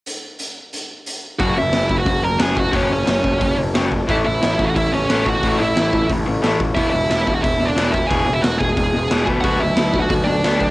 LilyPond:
<<
  \new Staff \with { instrumentName = "Lead electric guitar" } { \time 4/4 \key fis \minor \tempo 4 = 179 r1 | <fis' fis''>8 <e' e''>4~ <e' e''>16 <fis' fis''>8. <ais' ais''>8 <gis' gis''>8 <fis' fis''>8 | <cis' cis''>8 <cis' cis''>2 r4. | <e' e''>8 <e' e''>4~ <e' e''>16 <fis' fis''>16 <e' e''>8 <cis' cis''>4 <fis' fis''>8~ |
<fis' fis''>8 <e' e''>4. r2 | <e' e''>8 <e' e''>4~ <e' e''>16 <fis' fis''>16 <e' e''>8. <d' d''>8. <e' e''>8 | <gis' gis''>8. <e' e''>16 <fis' fis''>8 <gis' gis''>2 r8 | <fis' fis''>8 <e' e''>4~ <e' e''>16 <fis' fis''>8. <d' d''>4. | }
  \new Staff \with { instrumentName = "Overdriven electric guitar" } { \clef bass \time 4/4 \key fis \minor r1 | <fis, cis fis>8 <fis, cis>8 <fis, cis>8 <fis, cis>8 <fis, cis>8 <fis, cis>8 <fis, cis fis>8 <fis, cis>8 | <fis, cis fis>8 <fis, cis>8 <fis, cis>8 <fis, cis>8 <fis, cis>8 <fis, cis>8 <fis, cis fis>8 <fis, cis>8 | <a, e a>8 <a, e>8 <a, e>8 <a, e>8 <a, e>8 <a, e>8 <a, e a>8 <a, e>8 |
<a, e a>8 <a, e>8 <a, e>8 <a, e>8 <a, e>8 <a, e>8 <a, e a>8 <a, e>8 | <e, b, e>8 <e, b,>8 <e, b,>8 <e, b,>8 <e, b,>8 <e, b,>8 <e, b, e>8 <e, b,>8 | <e, b, e>8 <e, b,>8 <e, b,>8 <e, b,>8 <e, b,>8 <e, b,>8 <e, b, e>8 <b, fis b>8 | <b, fis b>8 <b, fis>8 <b, fis>8 <b, fis>8 <b, fis>8 <b, fis>8 <b, fis b>8 <b, fis>8 | }
  \new Staff \with { instrumentName = "Picked electric bass" } { \clef bass \time 4/4 \key fis \minor r1 | fis,,8 fis,,8 fis,,8 fis,,8 fis,,8 fis,,8 fis,,4 | fis,,8 fis,,8 fis,,8 fis,,8 fis,,8 fis,,8 fis,,4 | a,,8 a,,8 a,,8 a,,8 a,,8 a,,8 a,,4 |
a,,8 a,,8 a,,8 a,,8 a,,8 a,,8 a,,4 | e,,8 e,,8 e,,8 e,,8 e,,8 e,,8 e,,4 | e,,8 e,,8 e,,8 e,,8 e,,8 e,,8 e,,8 d,8 | d,8 d,8 d,8 d,8 d,8 d,8 d,4 | }
  \new DrumStaff \with { instrumentName = "Drums" } \drummode { \time 4/4 hh4 hh4 hh4 hh4 | <hho bd>4 <hho sn>8 bd8 <hho bd>4 <hho sn>8 bd8 | <hho bd>4 <hho sn>8 bd8 <hho bd>4 <hho sn>8 bd8 | <hho bd>4 <hho sn>8 bd8 <hho bd>4 <hho sn>8 bd8 |
<hho bd>4 <hho sn>8 bd8 <hho bd>4 <hho sn>8 bd8 | <hho bd>4 <hho sn>8 bd8 <hho bd>4 <hho sn>8 bd8 | <hho bd>4 <hho sn>8 bd8 <hho bd>4 <hho sn>8 bd8 | <hho bd>4 <hho sn>8 bd8 <hho bd>4 <hho sn>8 bd8 | }
>>